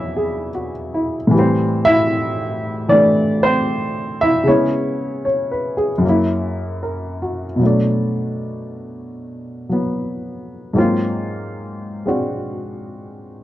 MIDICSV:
0, 0, Header, 1, 2, 480
1, 0, Start_track
1, 0, Tempo, 785340
1, 810, Time_signature, 4, 2, 24, 8
1, 8213, End_track
2, 0, Start_track
2, 0, Title_t, "Grand piano"
2, 0, Program_c, 0, 0
2, 0, Control_c, 0, 64, 127
2, 0, Note_on_c, 0, 40, 57
2, 0, Note_on_c, 0, 52, 52
2, 0, Note_on_c, 0, 54, 48
2, 0, Note_on_c, 0, 56, 53
2, 0, Note_on_c, 0, 59, 43
2, 0, Note_on_c, 0, 62, 63
2, 0, Note_on_c, 0, 64, 70
2, 0, Note_on_c, 0, 71, 83
2, 0, Note_on_c, 0, 74, 86
2, 0, Note_on_c, 0, 76, 94
2, 100, Note_on_c, 0, 68, 48
2, 305, Note_off_c, 0, 76, 0
2, 312, Note_off_c, 0, 64, 0
2, 335, Note_on_c, 0, 66, 47
2, 431, Note_off_c, 0, 68, 0
2, 576, Note_on_c, 0, 64, 51
2, 708, Note_off_c, 0, 66, 0
2, 778, Note_on_c, 0, 45, 63
2, 791, Note_off_c, 0, 52, 0
2, 800, Note_on_c, 0, 52, 58
2, 808, Note_off_c, 0, 40, 0
2, 809, Note_off_c, 0, 54, 0
2, 811, Note_off_c, 0, 56, 0
2, 812, Note_off_c, 0, 59, 0
2, 817, Control_c, 0, 64, 0
2, 819, Note_off_c, 0, 62, 0
2, 820, Note_off_c, 0, 71, 0
2, 820, Note_off_c, 0, 74, 0
2, 821, Note_on_c, 0, 55, 58
2, 846, Note_on_c, 0, 60, 73
2, 908, Note_off_c, 0, 64, 0
2, 933, Control_c, 0, 64, 127
2, 1131, Note_on_c, 0, 76, 113
2, 1142, Note_on_c, 0, 64, 83
2, 1749, Note_off_c, 0, 64, 0
2, 1755, Note_off_c, 0, 52, 0
2, 1764, Note_on_c, 0, 52, 45
2, 1770, Note_on_c, 0, 74, 87
2, 1781, Note_on_c, 0, 62, 70
2, 1782, Note_on_c, 0, 57, 48
2, 1787, Note_off_c, 0, 76, 0
2, 2074, Note_off_c, 0, 62, 0
2, 2096, Note_on_c, 0, 72, 93
2, 2099, Note_off_c, 0, 60, 0
2, 2099, Note_off_c, 0, 74, 0
2, 2108, Note_on_c, 0, 60, 68
2, 2554, Note_off_c, 0, 60, 0
2, 2574, Note_on_c, 0, 76, 96
2, 2586, Note_off_c, 0, 72, 0
2, 2587, Note_on_c, 0, 64, 73
2, 2609, Note_off_c, 0, 76, 0
2, 2621, Note_off_c, 0, 64, 0
2, 2711, Note_off_c, 0, 45, 0
2, 2711, Note_on_c, 0, 49, 53
2, 2724, Note_on_c, 0, 56, 49
2, 2725, Note_off_c, 0, 52, 0
2, 2733, Note_off_c, 0, 55, 0
2, 2733, Note_on_c, 0, 59, 50
2, 2734, Note_off_c, 0, 57, 0
2, 2736, Control_c, 0, 64, 0
2, 2736, Note_on_c, 0, 73, 71
2, 2741, Note_on_c, 0, 64, 61
2, 2748, Note_on_c, 0, 61, 55
2, 2835, Control_c, 0, 64, 127
2, 3199, Note_off_c, 0, 73, 0
2, 3208, Note_on_c, 0, 73, 48
2, 3370, Note_on_c, 0, 71, 48
2, 3507, Note_off_c, 0, 73, 0
2, 3527, Note_on_c, 0, 68, 52
2, 3617, Note_off_c, 0, 71, 0
2, 3655, Note_on_c, 0, 42, 56
2, 3674, Note_off_c, 0, 61, 0
2, 3679, Note_on_c, 0, 54, 51
2, 3680, Note_off_c, 0, 49, 0
2, 3686, Note_off_c, 0, 56, 0
2, 3690, Note_off_c, 0, 59, 0
2, 3694, Note_off_c, 0, 64, 0
2, 3696, Control_c, 0, 64, 0
2, 3701, Note_on_c, 0, 58, 48
2, 3722, Note_on_c, 0, 64, 62
2, 3776, Note_off_c, 0, 68, 0
2, 3797, Control_c, 0, 64, 127
2, 4174, Note_on_c, 0, 70, 45
2, 4414, Note_on_c, 0, 66, 46
2, 4548, Note_off_c, 0, 70, 0
2, 4621, Note_on_c, 0, 47, 52
2, 4632, Note_off_c, 0, 54, 0
2, 4633, Note_off_c, 0, 42, 0
2, 4642, Note_on_c, 0, 54, 48
2, 4655, Note_off_c, 0, 58, 0
2, 4657, Control_c, 0, 64, 0
2, 4665, Note_on_c, 0, 57, 46
2, 4666, Note_off_c, 0, 64, 0
2, 4684, Note_on_c, 0, 62, 56
2, 4747, Note_off_c, 0, 66, 0
2, 4751, Control_c, 0, 64, 127
2, 5916, Note_off_c, 0, 54, 0
2, 5925, Note_on_c, 0, 54, 44
2, 5944, Note_on_c, 0, 59, 49
2, 6559, Note_off_c, 0, 47, 0
2, 6559, Note_off_c, 0, 54, 0
2, 6561, Note_on_c, 0, 44, 56
2, 6568, Note_on_c, 0, 54, 50
2, 6574, Note_on_c, 0, 58, 53
2, 6578, Note_off_c, 0, 59, 0
2, 6580, Note_off_c, 0, 57, 0
2, 6581, Control_c, 0, 64, 0
2, 6583, Note_on_c, 0, 60, 50
2, 6590, Note_off_c, 0, 62, 0
2, 6590, Note_on_c, 0, 65, 60
2, 6687, Control_c, 0, 64, 127
2, 7366, Note_off_c, 0, 60, 0
2, 7369, Note_on_c, 0, 56, 47
2, 7375, Note_on_c, 0, 60, 44
2, 7380, Note_on_c, 0, 62, 42
2, 7386, Note_on_c, 0, 66, 51
2, 8213, Note_off_c, 0, 44, 0
2, 8213, Note_off_c, 0, 54, 0
2, 8213, Note_off_c, 0, 56, 0
2, 8213, Note_off_c, 0, 58, 0
2, 8213, Note_off_c, 0, 60, 0
2, 8213, Note_off_c, 0, 62, 0
2, 8213, Note_off_c, 0, 65, 0
2, 8213, Note_off_c, 0, 66, 0
2, 8213, End_track
0, 0, End_of_file